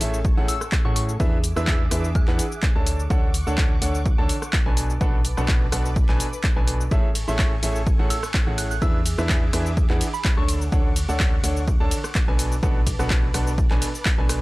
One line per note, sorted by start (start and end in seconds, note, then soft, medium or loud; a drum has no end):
0.00 0.35 A1 loud
0.00 0.17 A2 medium
0.00 0.17 C#4 medium
0.00 0.17 G#4 medium
0.00 1.18 A4 medium
0.00 0.17 A4 medium
0.00 0.17 E5 medium
0.00 1.18 G#5 medium
0.00 1.18 C#6 medium
0.00 open hi-hat loud
0.00 shaker medium
0.14 shaker soft
0.25 kick loud
0.25 shaker soft
0.37 0.50 A1 loud
0.37 0.53 A2 loud
0.37 0.53 C#4 medium
0.37 0.53 G#4 medium
0.37 0.53 A4 medium
0.37 0.53 F#5 loud
0.48 0.66 E6 medium
0.48 open hi-hat loud
0.48 shaker medium
0.61 cross-stick medium
0.61 shaker soft
0.72 kick loud
0.72 clap loud
0.72 shaker soft
0.85 1.18 A2 medium
0.85 1.10 A2 medium
0.85 1.10 C#4 medium
0.85 1.10 G#4 medium
0.85 1.10 A4 medium
0.85 1.10 F#5 medium
0.85 0.92 C#6 medium
0.96 1.04 C#6 medium
0.96 open hi-hat loud
0.96 shaker medium
1.09 shaker soft
1.20 1.54 E2 medium
1.20 1.36 E3 loud
1.20 1.36 D4 loud
1.20 1.36 G#4 medium
1.20 2.85 G#4 medium
1.20 1.36 B4 medium
1.20 1.36 E5 loud
1.20 2.85 E5 medium
1.20 2.85 D6 medium
1.20 kick loud
1.20 shaker soft
1.44 open hi-hat loud
1.44 shaker medium
1.56 1.89 E2 medium
1.56 1.82 E3 loud
1.56 1.82 D4 medium
1.56 1.82 G#4 medium
1.56 1.82 B4 medium
1.56 1.82 E5 loud
1.56 1.64 E6 medium
1.56 cross-stick medium
1.56 shaker soft
1.67 1.76 E6 medium
1.67 kick loud
1.67 clap loud
1.67 shaker soft
1.91 2.25 E2 loud
1.91 2.08 E3 medium
1.91 2.08 D4 medium
1.91 2.08 G#4 medium
1.91 2.08 B4 medium
1.91 2.08 E5 medium
1.91 cross-stick medium
1.91 open hi-hat loud
1.91 shaker medium
2.04 shaker soft
2.15 2.63 F#6 loud
2.15 kick loud
2.15 shaker soft
2.28 2.41 E2 loud
2.28 2.43 E3 loud
2.28 2.43 D4 medium
2.28 2.43 G#4 medium
2.28 2.43 B4 medium
2.28 2.43 F#5 loud
2.28 clap soft
2.39 open hi-hat loud
2.39 shaker medium
2.52 shaker soft
2.63 kick loud
2.63 clap loud
2.63 shaker soft
2.75 3.08 D2 loud
2.75 3.01 D3 medium
2.75 3.01 D4 medium
2.75 3.01 A4 medium
2.75 3.01 C#5 medium
2.75 3.01 A5 medium
2.86 4.75 F#5 medium
2.86 4.75 C#6 medium
2.86 4.75 D6 loud
2.86 open hi-hat loud
2.86 shaker medium
3.00 shaker soft
3.10 3.44 D2 medium
3.10 3.27 D3 loud
3.10 3.27 D4 medium
3.10 3.27 A4 medium
3.10 3.27 C#5 medium
3.10 3.27 F#5 loud
3.10 kick loud
3.10 shaker soft
3.34 open hi-hat loud
3.34 shaker medium
3.47 3.80 D2 medium
3.47 3.72 D3 loud
3.47 3.72 D4 medium
3.47 3.72 A4 medium
3.47 3.72 C#5 medium
3.47 3.72 F#5 loud
3.47 shaker soft
3.58 kick loud
3.58 clap loud
3.58 shaker soft
3.82 4.16 D2 loud
3.82 3.98 D3 medium
3.82 3.98 D4 medium
3.82 3.98 A4 medium
3.82 3.98 C#5 medium
3.82 3.98 F#5 medium
3.82 open hi-hat loud
3.82 shaker medium
3.95 shaker soft
4.06 kick loud
4.06 shaker soft
4.18 4.31 D2 loud
4.18 4.34 D3 loud
4.18 4.34 D4 medium
4.18 4.34 A4 medium
4.18 4.34 C#5 medium
4.18 4.34 A5 loud
4.29 open hi-hat loud
4.29 shaker medium
4.42 cross-stick medium
4.42 shaker soft
4.53 kick loud
4.53 clap loud
4.53 shaker soft
4.66 4.99 B1 loud
4.66 4.91 B2 medium
4.66 4.91 D4 medium
4.66 4.91 A4 medium
4.66 4.91 B4 medium
4.66 4.91 G#5 loud
4.77 6.89 B4 medium
4.77 6.89 A5 medium
4.77 6.89 D6 medium
4.77 open hi-hat loud
4.77 shaker medium
4.90 shaker soft
5.01 5.35 B1 medium
5.01 5.17 B2 loud
5.01 5.17 D4 medium
5.01 5.17 A4 medium
5.01 5.17 B4 medium
5.01 5.17 F#5 loud
5.01 kick loud
5.01 shaker soft
5.25 open hi-hat loud
5.25 shaker medium
5.37 5.70 B1 medium
5.37 5.63 B2 loud
5.37 5.63 D4 medium
5.37 5.63 A4 medium
5.37 5.63 B4 medium
5.37 5.63 F#5 loud
5.37 cross-stick medium
5.37 shaker soft
5.48 kick loud
5.48 clap loud
5.48 shaker soft
5.72 6.06 B1 loud
5.72 5.89 B2 medium
5.72 5.89 D4 medium
5.72 5.89 A4 medium
5.72 5.89 B4 medium
5.72 5.89 F#5 loud
5.72 cross-stick medium
5.72 open hi-hat loud
5.72 shaker medium
5.85 shaker soft
5.96 kick loud
5.96 shaker soft
6.09 6.22 B1 loud
6.09 6.24 B2 loud
6.09 6.24 D4 medium
6.09 6.24 A4 medium
6.09 6.24 B4 medium
6.09 6.24 G#5 loud
6.09 clap soft
6.20 open hi-hat loud
6.20 shaker medium
6.33 shaker soft
6.44 kick loud
6.44 clap loud
6.44 shaker soft
6.56 6.89 B1 loud
6.56 6.82 B2 medium
6.56 6.82 D4 medium
6.56 6.82 A4 medium
6.56 6.82 B4 medium
6.56 6.82 G#5 medium
6.68 open hi-hat loud
6.68 shaker medium
6.81 shaker soft
6.91 7.25 A1 medium
6.91 7.08 A2 loud
6.91 7.08 C#4 medium
6.91 7.08 G#4 medium
6.91 8.80 A4 medium
6.91 7.08 A4 medium
6.91 7.08 E5 loud
6.91 8.80 G#5 medium
6.91 8.80 C#6 loud
6.91 kick loud
6.91 shaker soft
7.15 open hi-hat loud
7.15 ride medium
7.15 shaker medium
7.28 7.61 A1 medium
7.28 7.53 A2 loud
7.28 7.53 C#4 medium
7.28 7.53 G#4 medium
7.28 7.53 A4 medium
7.28 7.53 E5 loud
7.28 7.45 C#6 medium
7.28 shaker soft
7.39 kick loud
7.39 clap loud
7.39 shaker soft
7.63 7.97 A1 loud
7.63 7.79 A2 medium
7.63 7.79 C#4 medium
7.63 7.79 G#4 medium
7.63 7.79 A4 medium
7.63 7.79 E5 medium
7.63 open hi-hat loud
7.63 ride medium
7.63 shaker medium
7.76 shaker soft
7.87 kick loud
7.87 shaker soft
7.99 8.12 A1 loud
7.99 8.15 A2 loud
7.99 8.15 C#4 medium
7.99 8.15 G#4 medium
7.99 8.15 A4 medium
7.99 8.15 F#5 loud
8.10 8.28 E6 medium
8.10 open hi-hat loud
8.10 ride medium
8.10 shaker medium
8.23 cross-stick medium
8.23 shaker soft
8.34 kick loud
8.34 clap loud
8.34 shaker soft
8.47 8.80 A1 loud
8.47 8.72 A2 medium
8.47 8.72 C#4 medium
8.47 8.72 G#4 medium
8.47 8.72 A4 medium
8.47 8.72 F#5 medium
8.58 8.66 F#6 medium
8.58 open hi-hat loud
8.58 ride medium
8.58 shaker medium
8.71 8.78 F#6 medium
8.71 shaker soft
8.82 9.16 E2 loud
8.82 8.98 E3 loud
8.82 8.98 D4 loud
8.82 8.98 G#4 medium
8.82 10.47 G#4 medium
8.82 8.98 B4 loud
8.82 8.98 E5 loud
8.82 10.47 E5 medium
8.82 10.47 D6 medium
8.82 9.00 E6 medium
8.82 kick loud
8.82 shaker soft
9.06 open hi-hat loud
9.06 ride medium
9.06 shaker medium
9.18 9.51 E2 medium
9.18 9.44 E3 loud
9.18 9.44 D4 medium
9.18 9.44 G#4 medium
9.18 9.44 B4 medium
9.18 9.44 E5 loud
9.18 cross-stick medium
9.18 shaker soft
9.29 kick loud
9.29 clap loud
9.29 shaker soft
9.53 9.87 E2 loud
9.53 9.70 E3 medium
9.53 9.70 D4 medium
9.53 9.70 G#4 medium
9.53 9.70 B4 medium
9.53 9.70 E5 medium
9.53 cross-stick medium
9.53 open hi-hat loud
9.53 ride medium
9.53 shaker medium
9.66 shaker soft
9.77 kick loud
9.77 shaker soft
9.90 10.03 E2 loud
9.90 10.05 E3 loud
9.90 10.05 D4 medium
9.90 10.05 G#4 medium
9.90 10.05 B4 medium
9.90 10.05 F#5 loud
9.90 clap soft
10.01 open hi-hat loud
10.01 ride medium
10.01 shaker medium
10.14 10.30 B5 loud
10.14 shaker soft
10.25 kick loud
10.25 clap loud
10.25 shaker soft
10.37 10.70 D2 loud
10.37 10.63 D3 medium
10.37 10.63 D4 medium
10.37 10.63 A4 medium
10.37 10.63 C#5 medium
10.37 10.63 A5 medium
10.37 10.54 C#6 loud
10.48 12.37 F#5 medium
10.48 12.37 C#6 medium
10.48 14.42 D6 medium
10.48 open hi-hat loud
10.48 ride medium
10.48 shaker medium
10.62 shaker soft
10.72 11.06 D2 loud
10.72 10.89 D3 loud
10.72 10.89 D4 loud
10.72 10.89 A4 loud
10.72 10.89 C#5 medium
10.72 10.89 F#5 loud
10.72 kick loud
10.72 shaker soft
10.96 open hi-hat loud
10.96 ride medium
10.96 shaker medium
11.09 11.41 D2 medium
11.09 11.34 D3 loud
11.09 11.34 D4 medium
11.09 11.34 A4 medium
11.09 11.34 C#5 medium
11.09 11.34 F#5 loud
11.09 shaker soft
11.20 kick loud
11.20 clap loud
11.20 shaker soft
11.44 11.78 D2 loud
11.44 11.60 D3 medium
11.44 11.60 D4 medium
11.44 11.60 A4 medium
11.44 11.60 C#5 medium
11.44 11.60 F#5 loud
11.44 open hi-hat loud
11.44 ride medium
11.44 shaker medium
11.57 shaker soft
11.68 kick loud
11.68 shaker soft
11.80 11.93 D2 loud
11.80 11.96 D3 loud
11.80 11.96 D4 loud
11.80 11.96 A4 medium
11.80 11.96 C#5 medium
11.80 11.96 A5 loud
11.91 open hi-hat loud
11.91 ride medium
11.91 shaker medium
12.04 cross-stick medium
12.04 shaker soft
12.15 kick loud
12.15 clap loud
12.15 shaker soft
12.28 12.61 B1 loud
12.28 12.53 B2 medium
12.28 12.53 D4 medium
12.28 12.53 A4 medium
12.28 12.53 B4 medium
12.28 12.53 G#5 medium
12.39 14.42 B4 medium
12.39 14.42 A5 medium
12.39 open hi-hat loud
12.39 ride medium
12.39 shaker medium
12.52 shaker soft
12.63 12.97 B1 loud
12.63 12.79 B2 loud
12.63 12.79 D4 loud
12.63 12.79 A4 loud
12.63 12.79 B4 loud
12.63 12.79 F#5 loud
12.63 kick loud
12.63 shaker soft
12.87 kick medium
12.87 open hi-hat loud
12.87 ride medium
12.87 shaker medium
12.99 13.32 B1 medium
12.99 13.25 B2 loud
12.99 13.25 D4 medium
12.99 13.25 A4 medium
12.99 13.25 B4 medium
12.99 13.25 F#5 loud
12.99 cross-stick medium
12.99 shaker soft
13.10 kick loud
13.10 clap loud
13.10 shaker soft
13.34 13.68 B1 loud
13.34 13.51 B2 medium
13.34 13.51 D4 medium
13.34 13.51 A4 medium
13.34 13.51 B4 medium
13.34 13.51 F#5 medium
13.34 cross-stick medium
13.34 open hi-hat loud
13.34 ride medium
13.34 shaker medium
13.47 shaker soft
13.58 kick loud
13.58 shaker soft
13.71 13.84 B1 loud
13.71 13.86 B2 loud
13.71 13.86 D4 loud
13.71 13.86 A4 medium
13.71 13.86 B4 medium
13.71 13.86 G#5 loud
13.71 clap soft
13.82 open hi-hat loud
13.82 ride medium
13.82 shaker medium
13.95 shaker soft
14.05 kick loud
14.05 clap loud
14.05 shaker soft
14.18 14.42 B1 loud
14.18 14.42 B2 medium
14.18 14.42 D4 medium
14.18 14.42 A4 medium
14.18 14.42 B4 medium
14.18 14.42 G#5 medium
14.29 cross-stick medium
14.29 open hi-hat loud
14.29 ride medium
14.29 shaker medium